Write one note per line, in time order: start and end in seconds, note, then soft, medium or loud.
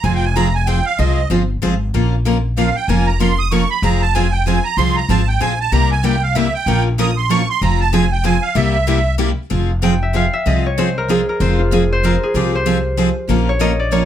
0.04 0.80 F1 loud
0.04 0.24 F3 medium
0.04 0.25 C4 medium
0.04 0.25 F4 medium
0.04 0.25 G#4 medium
0.04 0.25 C5 medium
0.04 0.14 G#5 medium
0.15 0.25 G5 medium
0.25 0.35 G#5 medium
0.36 0.47 F3 medium
0.36 0.47 C4 loud
0.36 0.47 F4 loud
0.36 0.47 G#4 loud
0.36 0.47 C5 loud
0.36 0.54 A#5 medium
0.55 0.67 G#5 medium
0.66 0.78 F3 medium
0.66 0.78 C4 medium
0.66 0.79 F4 loud
0.66 0.79 G#4 medium
0.66 0.79 C5 medium
0.66 0.85 G5 medium
0.86 0.98 F5 loud
0.99 1.24 C2 medium
0.99 1.19 F3 medium
0.99 1.19 C4 medium
0.99 1.19 F4 medium
0.99 1.20 G#4 medium
0.99 1.20 C5 medium
0.99 1.28 D#5 medium
1.30 1.57 G1 medium
1.30 1.41 F3 medium
1.30 1.42 C4 medium
1.30 1.42 F4 medium
1.30 1.42 G#4 medium
1.30 1.42 C5 medium
1.62 1.90 G#1 medium
1.62 1.73 F3 medium
1.62 1.73 C4 loud
1.62 1.74 F4 medium
1.62 1.74 G#4 medium
1.62 1.74 C5 medium
1.94 2.70 A#1 medium
1.94 2.14 F3 medium
1.94 2.14 A#3 medium
1.94 2.14 C#4 medium
1.94 2.14 F4 medium
1.94 2.15 A#4 medium
2.25 2.36 F3 medium
2.25 2.36 A#3 medium
2.25 2.37 C#4 medium
2.25 2.37 F4 loud
2.25 2.37 A#4 medium
2.57 2.68 F3 medium
2.57 2.68 A#3 medium
2.57 2.68 C#4 medium
2.57 2.68 F4 medium
2.57 2.68 A#4 loud
2.57 2.76 F5 medium
2.76 2.88 G5 medium
2.88 3.64 F1 medium
2.88 3.08 F3 medium
2.88 3.08 A#3 medium
2.88 3.09 C#4 medium
2.88 3.09 F4 medium
2.88 3.09 A#4 medium
2.88 3.07 G#5 medium
3.07 3.19 A#5 medium
3.19 3.31 F3 medium
3.19 3.31 A#3 medium
3.19 3.31 C#4 medium
3.19 3.31 F4 loud
3.19 3.31 A#4 loud
3.19 3.39 C6 medium
3.39 3.51 D#6 loud
3.51 3.63 F3 medium
3.51 3.63 A#3 medium
3.51 3.63 C#4 medium
3.51 3.63 F4 medium
3.51 3.63 A#4 medium
3.51 3.70 C#6 medium
3.70 3.83 B5 loud
3.82 4.58 F1 loud
3.82 4.03 F3 medium
3.82 4.03 C4 medium
3.82 4.04 F4 medium
3.82 4.04 G#4 medium
3.82 4.04 C5 medium
3.82 4.02 A#5 medium
4.02 4.14 A5 loud
4.14 4.26 F3 medium
4.14 4.26 C4 loud
4.14 4.26 F4 loud
4.14 4.26 G#4 loud
4.14 4.26 C5 loud
4.14 4.33 G#5 medium
4.32 4.45 G5 medium
4.46 4.57 F3 loud
4.46 4.57 C4 medium
4.46 4.57 F4 loud
4.46 4.57 G#4 loud
4.46 4.58 C5 loud
4.46 4.65 G#5 medium
4.64 4.77 A#5 loud
4.77 5.03 C2 medium
4.77 4.97 F3 medium
4.77 4.98 C4 medium
4.77 4.98 F4 medium
4.77 4.98 G#4 medium
4.77 4.98 C5 medium
4.77 4.96 C6 loud
4.96 5.09 A#5 medium
5.09 5.36 G#1 medium
5.09 5.20 F3 medium
5.09 5.20 C4 medium
5.09 5.20 F4 medium
5.09 5.21 G#4 loud
5.09 5.21 C5 loud
5.09 5.28 A5 medium
5.28 5.40 G5 loud
5.40 5.68 A#1 medium
5.40 5.51 F3 medium
5.40 5.51 C4 medium
5.40 5.52 F4 medium
5.40 5.52 G#4 medium
5.40 5.52 C5 medium
5.40 5.59 G#5 medium
5.60 5.72 A5 loud
5.71 6.48 C2 medium
5.71 5.92 C3 medium
5.71 5.92 G3 medium
5.71 5.92 A#3 medium
5.71 5.92 E4 medium
5.71 5.92 G4 medium
5.71 5.90 A#5 loud
5.92 6.04 G#5 medium
6.03 6.14 C3 medium
6.03 6.14 G3 medium
6.03 6.15 A#3 loud
6.03 6.15 E4 loud
6.03 6.15 G4 loud
6.03 6.23 G5 medium
6.23 6.35 F5 medium
6.35 6.46 C3 medium
6.35 6.46 G3 medium
6.35 6.47 A#3 loud
6.35 6.47 E4 loud
6.35 6.47 G4 medium
6.35 6.54 E5 medium
6.54 6.84 G5 medium
6.66 7.42 A#1 loud
6.66 6.87 F3 medium
6.66 6.87 A#3 medium
6.66 6.87 C#4 medium
6.66 6.88 F4 medium
6.66 6.88 A#4 medium
6.98 7.09 F3 loud
6.98 7.09 A#3 loud
6.98 7.10 C#4 loud
6.98 7.10 F4 medium
6.98 7.10 A#4 loud
6.98 7.17 D#6 loud
7.17 7.29 C6 medium
7.29 7.41 F3 medium
7.29 7.41 A#3 medium
7.29 7.41 C#4 loud
7.29 7.41 F4 loud
7.29 7.41 A#4 medium
7.29 7.49 C#6 loud
7.50 7.62 C6 loud
7.61 8.37 F1 loud
7.61 7.81 F3 medium
7.61 7.82 C4 medium
7.61 7.82 F4 medium
7.61 7.82 G#4 medium
7.61 7.82 C5 medium
7.61 7.80 A#5 medium
7.81 7.93 A5 loud
7.93 8.04 F3 loud
7.93 8.04 C4 medium
7.93 8.04 F4 loud
7.93 8.04 G#4 loud
7.93 8.04 C5 loud
7.93 8.12 G#5 loud
8.12 8.24 G5 medium
8.24 8.35 F3 medium
8.24 8.35 C4 medium
8.24 8.35 F4 medium
8.24 8.36 G#4 medium
8.24 8.36 C5 loud
8.24 8.43 G#5 loud
8.43 8.55 F5 medium
8.55 9.31 C2 loud
8.55 8.76 C3 medium
8.55 8.76 G3 medium
8.55 8.76 A#3 medium
8.55 8.76 E4 medium
8.55 8.76 G4 medium
8.55 9.15 E5 medium
8.87 8.98 C3 medium
8.87 8.98 G3 loud
8.87 8.98 A#3 loud
8.87 8.99 E4 medium
8.87 8.99 G4 loud
9.19 9.30 C3 medium
9.19 9.30 G3 medium
9.19 9.30 A#3 medium
9.19 9.30 E4 loud
9.19 9.30 G4 loud
9.50 10.27 F1 loud
9.50 9.70 F3 medium
9.50 9.71 C4 medium
9.50 9.71 F4 medium
9.50 9.71 G#4 medium
9.50 9.71 C5 medium
9.82 9.93 F3 medium
9.82 9.93 C4 medium
9.82 9.93 F4 medium
9.82 9.94 G#4 loud
9.82 9.94 C5 loud
9.82 11.16 G5 medium
10.03 10.22 E5 medium
10.14 10.25 F3 medium
10.14 10.25 C4 medium
10.14 10.25 F4 medium
10.14 10.25 G#4 medium
10.14 10.25 C5 medium
10.14 10.39 F5 loud
10.33 10.53 E5 medium
10.46 11.21 C2 medium
10.46 10.65 F3 medium
10.46 10.66 C4 medium
10.46 10.66 F4 medium
10.46 10.66 G#4 medium
10.46 10.66 C5 medium
10.46 12.26 D#5 medium
10.66 10.85 C#5 medium
10.77 10.88 F3 medium
10.77 10.88 C4 medium
10.77 10.88 F4 loud
10.77 10.88 G#4 loud
10.77 10.88 C5 loud
10.77 11.41 C5 medium
10.98 11.29 A#4 medium
11.08 11.19 F3 medium
11.08 11.19 C4 medium
11.08 11.20 F4 medium
11.08 11.20 G#4 loud
11.08 11.73 G#4 medium
11.08 11.20 C5 medium
11.29 12.05 A#4 medium
11.40 12.16 F1 loud
11.40 11.60 F3 medium
11.40 11.60 C4 medium
11.40 11.61 F4 medium
11.40 11.61 G#4 medium
11.40 11.92 C5 medium
11.40 11.61 C5 medium
11.59 14.05 F4 medium
11.71 11.82 F3 medium
11.71 11.82 C4 medium
11.71 11.82 F4 medium
11.71 11.83 G#4 loud
11.71 12.23 G#4 medium
11.71 11.83 C5 loud
11.93 12.55 C5 loud
12.03 12.14 F3 medium
12.03 12.14 C4 medium
12.03 12.14 F4 loud
12.03 12.14 G#4 medium
12.03 14.05 A#4 medium
12.03 12.15 C5 medium
12.23 12.42 G#4 medium
12.34 13.10 C2 medium
12.34 12.54 F3 medium
12.34 12.55 C4 medium
12.34 12.55 F4 medium
12.34 14.05 G4 medium
12.34 12.55 G#4 medium
12.34 12.55 C5 medium
12.55 13.55 C5 medium
12.65 12.77 F3 medium
12.65 12.77 C4 loud
12.65 12.77 F4 medium
12.65 12.77 G#4 loud
12.65 12.77 C5 loud
12.97 13.08 F3 medium
12.97 13.08 C4 medium
12.97 13.08 F4 medium
12.97 13.09 G#4 medium
12.97 13.09 C5 medium
13.28 14.04 A#1 medium
13.28 13.48 F3 medium
13.28 13.49 A#3 medium
13.28 13.49 C#4 medium
13.28 13.49 F4 medium
13.28 13.49 A#4 medium
13.49 13.85 C#5 medium
13.59 13.71 F3 medium
13.59 13.71 A#3 medium
13.59 13.71 C#4 medium
13.59 13.71 F4 medium
13.59 13.71 A#4 loud
13.59 13.85 D#5 medium
13.79 13.98 D5 medium
13.91 14.02 F3 medium
13.91 14.03 A#3 medium
13.91 14.03 C#4 medium
13.91 14.03 F4 medium
13.91 14.03 A#4 medium
13.91 14.05 C#5 medium